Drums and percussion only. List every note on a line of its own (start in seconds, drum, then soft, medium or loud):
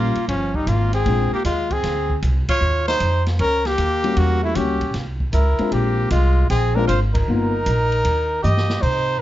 0.15 ride soft
0.28 kick soft
0.28 ride medium
0.54 kick soft
0.67 kick soft
0.67 hi-hat pedal soft
0.67 ride medium
0.93 ride soft
1.06 kick soft
1.06 ride soft
1.45 kick soft
1.45 hi-hat pedal soft
1.45 ride medium
1.70 kick medium
1.70 ride soft
1.83 snare soft
1.83 ride medium
2.10 kick soft
2.22 kick soft
2.22 hi-hat pedal soft
2.22 ride medium
2.48 kick medium
2.48 ride medium
2.88 snare soft
3.00 kick soft
3.00 hi-hat pedal soft
3.00 ride medium
3.26 snare soft
3.26 ride soft
3.39 kick soft
3.39 ride medium
3.65 snare soft
3.65 ride soft
3.78 kick soft
3.78 hi-hat pedal soft
3.78 ride medium
4.04 ride soft
4.16 ride medium
4.55 kick soft
4.55 hi-hat pedal medium
4.55 ride medium
4.81 kick medium
4.81 ride soft
4.94 kick soft
4.94 snare soft
4.94 ride medium
5.20 kick soft
5.33 kick soft
5.33 hi-hat pedal medium
5.33 ride medium
5.58 ride soft
5.72 kick soft
5.72 ride soft
6.10 kick soft
6.10 hi-hat pedal soft
6.10 ride medium
6.50 kick soft
6.50 ride medium
6.89 kick soft
6.89 hi-hat pedal soft
6.89 ride medium
7.15 kick medium
7.15 ride medium
7.66 kick soft
7.66 hi-hat pedal medium
7.66 ride medium
7.92 ride soft
8.05 kick soft
8.05 ride medium
8.44 hi-hat pedal soft
8.44 mid tom soft
8.57 snare medium
8.69 snare medium
8.83 kick medium
8.83 crash medium